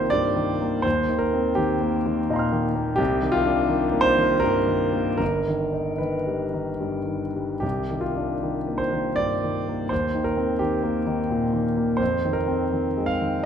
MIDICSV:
0, 0, Header, 1, 2, 480
1, 0, Start_track
1, 0, Key_signature, -3, "minor"
1, 0, Tempo, 734394
1, 556, Time_signature, 3, 2, 24, 8
1, 1036, Tempo, 710059
1, 2956, Tempo, 790514
1, 3916, Tempo, 816327
1, 4876, Tempo, 766284
1, 5836, Tempo, 714286
1, 8713, End_track
2, 0, Start_track
2, 0, Title_t, "Grand piano"
2, 0, Program_c, 0, 0
2, 0, Control_c, 0, 64, 127
2, 0, Note_on_c, 0, 36, 54
2, 0, Note_on_c, 0, 51, 39
2, 0, Note_on_c, 0, 58, 40
2, 0, Note_on_c, 0, 60, 46
2, 0, Note_on_c, 0, 65, 71
2, 0, Note_on_c, 0, 67, 77
2, 0, Note_on_c, 0, 72, 85
2, 66, Note_on_c, 0, 74, 97
2, 71, Note_off_c, 0, 72, 0
2, 78, Note_on_c, 0, 43, 42
2, 175, Note_off_c, 0, 51, 0
2, 236, Note_on_c, 0, 51, 38
2, 333, Note_off_c, 0, 43, 0
2, 401, Note_off_c, 0, 58, 0
2, 401, Note_on_c, 0, 58, 42
2, 491, Note_off_c, 0, 51, 0
2, 529, Note_off_c, 0, 36, 0
2, 538, Note_on_c, 0, 72, 80
2, 550, Note_off_c, 0, 74, 0
2, 556, Note_on_c, 0, 39, 57
2, 558, Note_off_c, 0, 58, 0
2, 568, Control_c, 0, 64, 0
2, 573, Note_off_c, 0, 60, 0
2, 573, Note_off_c, 0, 67, 0
2, 574, Note_off_c, 0, 65, 0
2, 658, Control_c, 0, 64, 127
2, 712, Note_on_c, 0, 51, 40
2, 775, Note_on_c, 0, 70, 73
2, 788, Note_off_c, 0, 72, 0
2, 872, Note_on_c, 0, 60, 44
2, 970, Note_off_c, 0, 51, 0
2, 1014, Note_on_c, 0, 67, 77
2, 1025, Note_off_c, 0, 70, 0
2, 1030, Note_on_c, 0, 51, 44
2, 1132, Note_off_c, 0, 60, 0
2, 1190, Note_on_c, 0, 58, 49
2, 1291, Note_off_c, 0, 51, 0
2, 1358, Note_on_c, 0, 51, 48
2, 1448, Note_off_c, 0, 58, 0
2, 1518, Note_on_c, 0, 46, 55
2, 1521, Note_on_c, 0, 75, 45
2, 1543, Note_on_c, 0, 82, 45
2, 1560, Note_on_c, 0, 84, 46
2, 1581, Note_on_c, 0, 89, 46
2, 1610, Note_off_c, 0, 51, 0
2, 1670, Note_on_c, 0, 51, 48
2, 1740, Note_off_c, 0, 67, 0
2, 1769, Note_off_c, 0, 46, 0
2, 1824, Note_on_c, 0, 58, 45
2, 1925, Note_off_c, 0, 51, 0
2, 1962, Note_off_c, 0, 39, 0
2, 1963, Note_on_c, 0, 67, 91
2, 1965, Note_off_c, 0, 75, 0
2, 1976, Note_off_c, 0, 82, 0
2, 1980, Note_on_c, 0, 36, 68
2, 1985, Note_off_c, 0, 84, 0
2, 1986, Note_off_c, 0, 58, 0
2, 1995, Note_off_c, 0, 89, 0
2, 2001, Control_c, 0, 64, 0
2, 2119, Control_c, 0, 64, 127
2, 2144, Note_on_c, 0, 51, 48
2, 2207, Note_on_c, 0, 65, 94
2, 2214, Note_off_c, 0, 67, 0
2, 2300, Note_on_c, 0, 62, 53
2, 2399, Note_off_c, 0, 51, 0
2, 2454, Note_on_c, 0, 51, 52
2, 2559, Note_off_c, 0, 62, 0
2, 2614, Note_on_c, 0, 58, 49
2, 2674, Note_on_c, 0, 72, 103
2, 2698, Note_off_c, 0, 65, 0
2, 2718, Note_off_c, 0, 51, 0
2, 2781, Note_on_c, 0, 51, 47
2, 2883, Note_off_c, 0, 58, 0
2, 2937, Note_on_c, 0, 70, 93
2, 2939, Note_off_c, 0, 72, 0
2, 2953, Note_on_c, 0, 43, 53
2, 3043, Note_off_c, 0, 51, 0
2, 3105, Note_on_c, 0, 51, 42
2, 3202, Note_off_c, 0, 43, 0
2, 3262, Note_on_c, 0, 58, 42
2, 3362, Note_off_c, 0, 51, 0
2, 3401, Note_off_c, 0, 36, 0
2, 3402, Note_off_c, 0, 70, 0
2, 3411, Note_on_c, 0, 70, 79
2, 3424, Note_on_c, 0, 31, 47
2, 3426, Note_off_c, 0, 58, 0
2, 3442, Control_c, 0, 64, 0
2, 3554, Control_c, 0, 64, 127
2, 3596, Note_on_c, 0, 51, 38
2, 3748, Note_on_c, 0, 63, 37
2, 3853, Note_off_c, 0, 51, 0
2, 3902, Note_on_c, 0, 71, 50
2, 3907, Note_off_c, 0, 70, 0
2, 3914, Note_on_c, 0, 51, 36
2, 4007, Note_off_c, 0, 63, 0
2, 4070, Note_on_c, 0, 55, 35
2, 4166, Note_off_c, 0, 51, 0
2, 4227, Note_on_c, 0, 51, 39
2, 4324, Note_off_c, 0, 55, 0
2, 4384, Note_on_c, 0, 43, 37
2, 4484, Note_off_c, 0, 51, 0
2, 4541, Note_on_c, 0, 51, 30
2, 4626, Note_off_c, 0, 71, 0
2, 4647, Note_off_c, 0, 43, 0
2, 4708, Note_on_c, 0, 55, 31
2, 4807, Note_off_c, 0, 51, 0
2, 4850, Note_off_c, 0, 31, 0
2, 4853, Note_on_c, 0, 67, 69
2, 4869, Note_on_c, 0, 36, 41
2, 4872, Note_off_c, 0, 55, 0
2, 4887, Control_c, 0, 64, 0
2, 4984, Control_c, 0, 64, 127
2, 5045, Note_on_c, 0, 51, 34
2, 5107, Note_on_c, 0, 65, 61
2, 5112, Note_off_c, 0, 67, 0
2, 5206, Note_on_c, 0, 62, 34
2, 5303, Note_off_c, 0, 51, 0
2, 5372, Note_on_c, 0, 51, 36
2, 5459, Note_off_c, 0, 62, 0
2, 5531, Note_on_c, 0, 58, 35
2, 5589, Note_on_c, 0, 72, 73
2, 5591, Note_off_c, 0, 65, 0
2, 5618, Note_off_c, 0, 51, 0
2, 5682, Note_on_c, 0, 51, 42
2, 5777, Note_off_c, 0, 58, 0
2, 5827, Note_on_c, 0, 74, 88
2, 5831, Note_off_c, 0, 72, 0
2, 5843, Note_on_c, 0, 43, 42
2, 5940, Note_off_c, 0, 51, 0
2, 6016, Note_on_c, 0, 51, 39
2, 6110, Note_off_c, 0, 43, 0
2, 6182, Note_on_c, 0, 58, 41
2, 6274, Note_off_c, 0, 51, 0
2, 6300, Note_off_c, 0, 36, 0
2, 6320, Note_on_c, 0, 72, 73
2, 6326, Note_off_c, 0, 74, 0
2, 6336, Note_off_c, 0, 58, 0
2, 6342, Note_on_c, 0, 39, 50
2, 6343, Control_c, 0, 64, 0
2, 6431, Control_c, 0, 64, 127
2, 6493, Note_on_c, 0, 51, 42
2, 6556, Note_on_c, 0, 70, 72
2, 6557, Note_off_c, 0, 72, 0
2, 6644, Note_on_c, 0, 60, 46
2, 6736, Note_off_c, 0, 51, 0
2, 6789, Note_on_c, 0, 67, 69
2, 6792, Note_off_c, 0, 70, 0
2, 6804, Note_on_c, 0, 51, 39
2, 6892, Note_off_c, 0, 60, 0
2, 6953, Note_on_c, 0, 58, 47
2, 7050, Note_off_c, 0, 51, 0
2, 7110, Note_on_c, 0, 51, 49
2, 7200, Note_off_c, 0, 58, 0
2, 7269, Note_on_c, 0, 46, 48
2, 7355, Note_off_c, 0, 51, 0
2, 7424, Note_on_c, 0, 51, 43
2, 7493, Note_off_c, 0, 67, 0
2, 7516, Note_off_c, 0, 46, 0
2, 7580, Note_on_c, 0, 58, 43
2, 7678, Note_off_c, 0, 51, 0
2, 7715, Note_on_c, 0, 72, 72
2, 7718, Note_off_c, 0, 39, 0
2, 7737, Note_on_c, 0, 41, 49
2, 7741, Note_off_c, 0, 58, 0
2, 7750, Control_c, 0, 64, 0
2, 7842, Control_c, 0, 64, 127
2, 7905, Note_on_c, 0, 51, 42
2, 7959, Note_on_c, 0, 70, 72
2, 7971, Note_off_c, 0, 72, 0
2, 8058, Note_on_c, 0, 60, 45
2, 8162, Note_off_c, 0, 51, 0
2, 8224, Note_on_c, 0, 51, 37
2, 8320, Note_off_c, 0, 60, 0
2, 8391, Note_on_c, 0, 56, 41
2, 8451, Note_on_c, 0, 77, 77
2, 8457, Note_off_c, 0, 70, 0
2, 8484, Note_off_c, 0, 51, 0
2, 8552, Note_on_c, 0, 51, 37
2, 8651, Note_off_c, 0, 56, 0
2, 8688, Note_off_c, 0, 41, 0
2, 8707, Note_off_c, 0, 77, 0
2, 8713, Note_off_c, 0, 51, 0
2, 8713, End_track
0, 0, End_of_file